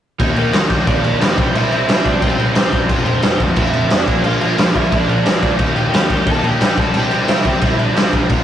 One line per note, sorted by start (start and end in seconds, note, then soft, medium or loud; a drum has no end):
0.19 0.49 D#2 medium
0.19 0.36 D#3 medium
0.19 0.36 A#3 loud
0.19 0.35 D#4 loud
0.19 kick loud
0.19 crash medium
0.36 0.51 D#3 medium
0.36 0.52 A#3 medium
0.36 0.68 A#3 medium
0.36 0.52 D#4 medium
0.36 0.69 A#4 medium
0.36 crash medium
0.52 0.67 D#2 medium
0.52 0.68 D#3 medium
0.52 0.67 A#3 medium
0.52 0.67 D#4 loud
0.52 snare loud
0.52 crash medium
0.68 0.85 D#2 medium
0.68 0.85 D#3 medium
0.68 0.86 A#3 medium
0.68 0.87 D#4 medium
0.68 kick medium
0.68 crash medium
0.86 1.02 D#2 medium
0.86 1.03 D#3 medium
0.86 1.03 A#3 loud
0.86 1.19 D4 medium
0.86 1.01 D#4 loud
0.86 1.22 D5 medium
0.86 kick loud
0.86 crash medium
1.02 1.18 D#2 medium
1.02 1.19 D#3 medium
1.02 1.20 A#3 medium
1.02 1.20 D#4 medium
1.02 crash medium
1.20 1.35 D#2 medium
1.20 1.36 D#3 loud
1.20 1.36 A#3 loud
1.20 1.52 C4 medium
1.20 1.37 D#4 loud
1.20 1.56 C5 medium
1.20 snare loud
1.20 crash medium
1.36 1.52 C2 medium
1.36 1.53 C3 medium
1.36 1.53 G3 loud
1.36 1.53 C4 loud
1.36 kick loud
1.36 crash medium
1.54 1.70 C2 medium
1.54 1.69 C3 medium
1.54 1.70 G3 medium
1.54 1.71 C4 loud
1.54 1.70 E4 medium
1.54 1.71 E5 medium
1.54 crash medium
1.71 1.86 C2 medium
1.71 1.87 C3 medium
1.71 1.87 G3 medium
1.71 1.87 C4 medium
1.71 2.03 E4 medium
1.71 2.07 E5 loud
1.71 crash medium
1.87 2.03 C2 medium
1.87 2.04 C3 medium
1.87 2.04 G3 loud
1.87 2.05 C4 loud
1.87 snare loud
1.87 crash medium
2.05 2.19 C2 medium
2.05 2.21 C3 medium
2.05 2.20 G3 medium
2.05 2.20 C4 medium
2.05 2.20 D4 medium
2.05 2.22 D5 medium
2.05 kick medium
2.05 crash medium
2.21 2.51 C2 medium
2.21 2.37 C3 medium
2.21 2.37 G3 medium
2.21 2.53 C4 medium
2.21 2.38 C4 medium
2.21 2.54 C5 medium
2.21 kick loud
2.21 crash medium
2.38 2.54 C3 medium
2.38 2.53 G3 medium
2.38 2.53 C4 medium
2.38 crash medium
2.54 2.71 C2 medium
2.54 2.70 C3 medium
2.54 2.70 G3 loud
2.54 2.78 C4 medium
2.54 2.71 C4 loud
2.54 2.79 C5 medium
2.54 snare loud
2.54 crash medium
2.71 2.90 G2 medium
2.71 2.87 C3 medium
2.71 2.88 G3 medium
2.71 2.88 C4 loud
2.71 kick medium
2.71 crash medium
2.87 3.18 F1 medium
2.87 3.04 F2 medium
2.87 3.04 C3 loud
2.87 3.04 F3 loud
2.87 kick loud
2.87 crash medium
3.04 3.21 F2 medium
3.04 3.21 C3 medium
3.04 3.22 F3 loud
3.04 3.37 C4 medium
3.04 3.37 C5 medium
3.04 crash medium
3.22 3.38 F1 medium
3.22 3.39 F2 medium
3.22 3.38 C3 medium
3.22 3.38 F3 loud
3.22 snare loud
3.22 crash medium
3.39 3.55 F1 medium
3.39 3.54 F2 medium
3.39 3.55 C3 medium
3.39 3.56 F3 medium
3.39 kick medium
3.39 crash medium
3.55 3.71 F1 medium
3.55 3.72 F2 loud
3.55 3.71 C3 loud
3.55 3.70 F3 medium
3.55 3.89 E4 medium
3.55 kick loud
3.55 crash medium
3.60 3.93 E5 loud
3.71 3.88 F1 medium
3.71 3.88 F2 medium
3.71 3.89 C3 medium
3.71 3.89 F3 medium
3.71 crash medium
3.89 4.05 F1 medium
3.89 4.06 F2 medium
3.89 4.06 C3 loud
3.89 4.06 F3 loud
3.89 4.23 D4 medium
3.89 snare loud
3.89 crash medium
3.94 4.24 D5 medium
4.06 4.22 A#1 loud
4.06 4.23 A#2 loud
4.06 4.22 F3 medium
4.06 4.23 A#3 loud
4.06 kick loud
4.06 crash medium
4.23 4.39 A#1 loud
4.23 4.40 A#2 medium
4.23 4.41 F3 loud
4.23 4.43 A#3 loud
4.23 4.39 F4 medium
4.23 4.41 F5 medium
4.23 crash medium
4.41 4.56 A#1 medium
4.41 4.57 A#2 medium
4.41 4.56 F3 medium
4.41 4.57 A#3 medium
4.41 4.72 F4 medium
4.41 4.76 F5 medium
4.41 crash medium
4.57 4.73 A#1 medium
4.57 4.73 A#2 medium
4.57 4.74 F3 medium
4.57 4.74 A#3 loud
4.57 snare loud
4.57 crash medium
4.74 4.90 A#1 medium
4.74 4.91 A#2 medium
4.74 4.90 F3 medium
4.74 4.91 A#3 medium
4.74 4.91 E4 medium
4.74 4.91 E5 medium
4.74 kick medium
4.74 crash medium
4.92 5.21 A#1 medium
4.92 5.06 A#2 medium
4.92 5.07 F3 medium
4.92 5.07 A#3 loud
4.92 5.25 D4 medium
4.92 kick loud
4.92 crash medium
4.96 5.27 D5 medium
5.07 5.25 A#2 medium
5.07 5.24 F3 medium
5.07 5.23 A#3 medium
5.07 crash medium
5.24 5.40 A#1 medium
5.24 5.40 A#2 loud
5.24 5.40 F3 loud
5.24 5.41 A#3 loud
5.24 5.49 D4 medium
5.24 snare loud
5.24 crash medium
5.29 5.51 D5 loud
5.41 5.57 D2 medium
5.41 5.57 A#2 medium
5.41 5.58 F3 medium
5.41 5.57 A#3 loud
5.41 kick medium
5.41 crash medium
5.57 5.89 D#2 medium
5.57 5.76 D#3 loud
5.57 5.75 A#3 loud
5.57 5.75 D#4 loud
5.57 kick loud
5.57 crash medium
5.76 5.91 D#3 medium
5.76 5.91 A#3 medium
5.76 5.92 D#4 loud
5.76 6.24 G4 medium
5.76 6.30 G5 loud
5.76 crash medium
5.92 6.07 D#2 medium
5.92 6.09 D#3 medium
5.92 6.08 A#3 loud
5.92 6.08 D#4 loud
5.92 snare loud
5.92 crash medium
6.09 6.25 D#2 medium
6.09 6.25 D#3 medium
6.09 6.25 A#3 medium
6.09 6.26 D#4 medium
6.09 kick medium
6.09 crash medium
6.26 6.41 D#2 medium
6.26 6.43 D#3 loud
6.26 6.42 A#3 loud
6.26 6.42 D#4 loud
6.26 6.44 A4 medium
6.26 kick loud
6.26 crash medium
6.31 6.46 A5 loud
6.43 6.58 D#2 medium
6.43 6.59 D#3 medium
6.43 6.59 A#3 medium
6.43 6.60 D#4 medium
6.43 6.76 G4 medium
6.43 6.80 G5 loud
6.43 crash medium
6.60 6.75 A#1 medium
6.60 6.76 D#3 loud
6.60 6.77 A#3 loud
6.60 6.77 D#4 loud
6.60 snare loud
6.60 crash medium
6.77 6.92 C2 medium
6.77 6.94 C3 loud
6.77 6.94 G3 loud
6.77 6.94 C4 loud
6.77 6.94 A4 medium
6.77 6.96 A5 loud
6.77 kick loud
6.77 crash medium
6.94 7.10 C2 loud
6.94 7.10 C3 medium
6.94 7.11 G3 loud
6.94 7.12 C4 loud
6.94 7.11 G4 medium
6.94 7.13 G5 loud
6.94 crash medium
7.11 7.27 C2 medium
7.11 7.27 C3 medium
7.11 7.27 G3 medium
7.11 7.27 C4 medium
7.11 7.28 G4 medium
7.11 7.31 G5 medium
7.11 crash medium
7.27 7.43 C2 medium
7.27 7.42 C3 medium
7.27 7.43 G3 medium
7.27 7.43 C4 loud
7.27 7.44 E4 medium
7.27 7.47 E5 loud
7.27 snare loud
7.27 crash medium
7.43 7.60 C2 medium
7.43 7.60 C3 medium
7.43 7.59 G3 medium
7.43 7.58 C4 medium
7.43 7.62 G4 medium
7.43 kick medium
7.43 crash medium
7.48 7.65 G5 loud
7.59 7.92 C2 medium
7.59 7.77 C3 medium
7.59 7.77 G3 medium
7.59 7.78 C4 medium
7.59 7.78 E4 medium
7.59 kick loud
7.59 crash medium
7.64 7.80 E5 loud
7.78 7.95 C3 medium
7.78 7.95 G3 medium
7.78 7.94 C4 medium
7.78 7.95 D4 medium
7.78 7.98 D5 loud
7.78 crash medium
7.95 8.10 C2 medium
7.95 8.11 C3 medium
7.95 8.11 G3 loud
7.95 8.12 C4 loud
7.95 8.20 C4 medium
7.95 8.23 C5 medium
7.95 snare loud
7.95 crash medium
8.12 8.31 G2 loud
8.12 8.29 C3 medium
8.12 8.29 G3 medium
8.12 8.29 C4 medium
8.12 kick medium
8.12 crash medium
8.29 8.44 F1 medium
8.29 8.44 F2 loud
8.29 8.44 C3 loud
8.29 8.44 F3 loud
8.29 kick loud
8.29 crash medium